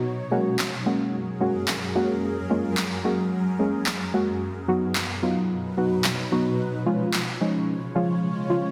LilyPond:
<<
  \new Staff \with { instrumentName = "Synth stab" } { \time 4/4 \key fis \major \tempo 4 = 110 r8 <gis ais cis' fis'>8 r8 <gis ais cis' fis'>8 r8 <gis ais cis' fis'>8 r8 <gis ais cis' fis'>8 | r8 <gis ais cis' eis'>8 r8 <gis ais cis' fis'>8 r8 <gis ais cis' gis'>8 r8 <gis ais cis' fis'>8 | r8 <fis b dis' fis'>8 r8 <fis b dis' eis'>8 r8 <fis b dis' fis'>8 r8 <fis b dis' fis'>8 | r8 <eis gis cis' eis'>8 r8 <eis gis cis' dis'>8 r8 <eis gis cis' eis'>8 r8 <eis gis cis' eis'>8 | }
  \new Staff \with { instrumentName = "Ambient pad" } { \time 4/4 \key fis \major <fis, fis gis' ais'>1~ | <fis, fis gis' ais'>1 | <b, fis dis' b'>1 | <cis gis eis' cis''>1 | }
  \new DrumStaff \with { instrumentName = "Drums" } \drummode { \time 4/4 r4 <hc sn>4 r4 <hc sn>4 | r4 <hc sn>4 r4 <hc sn>4 | r4 <hc sn>4 r4 <hc sn>4 | r4 <hc sn>4 r4 r4 | }
>>